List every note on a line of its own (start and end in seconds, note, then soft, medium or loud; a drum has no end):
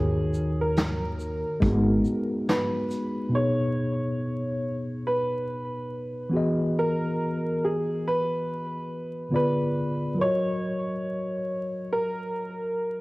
0.00 1.42 D#2 loud
0.00 1.57 D#3 medium
0.00 1.58 D#4 soft
0.00 1.59 F#4 soft
0.00 0.57 G#4 medium
0.00 1.59 A#4 soft
0.00 1.60 C#5 medium
0.34 shaker medium
0.61 2.28 A#4 medium
0.76 snare loud
0.76 closed hi-hat medium
1.20 shaker soft
1.60 2.02 G#1 loud
1.60 3.29 G#3 medium
1.60 3.30 D#4 medium
1.60 3.31 F#4 medium
1.60 kick medium
1.60 closed hi-hat medium
1.65 3.30 B3 medium
1.65 3.32 G#4 medium
2.05 shaker soft
2.49 3.37 B4 medium
2.49 snare loud
2.49 closed hi-hat medium
2.91 closed hi-hat soft
2.91 shaker medium
3.29 6.27 B2 medium
3.29 6.29 B3 medium
3.29 6.29 D#4 soft
3.35 6.30 G#4 medium
3.35 5.11 C#5 medium
3.35 6.31 C#5 medium
5.07 6.83 B4 medium
6.30 9.28 E3 medium
6.30 9.28 B3 medium
6.30 9.29 F#4 medium
6.35 9.30 G#4 medium
6.35 9.31 D#5 medium
6.79 7.66 A#4 medium
7.65 8.07 G#4 medium
8.07 9.31 B4 loud
9.31 10.18 D3 medium
9.31 10.18 B3 medium
9.31 10.15 F4 medium
9.31 10.19 G#4 soft
9.31 10.20 D5 medium
9.36 10.16 B4 medium
10.15 13.01 F#3 medium
10.15 10.26 F4 soft
10.15 13.01 A#4 soft
10.20 13.01 F#4 medium
10.20 13.01 C#5 medium
10.20 11.97 C#5 loud
10.20 13.01 D#5 medium
11.93 13.01 A#4 medium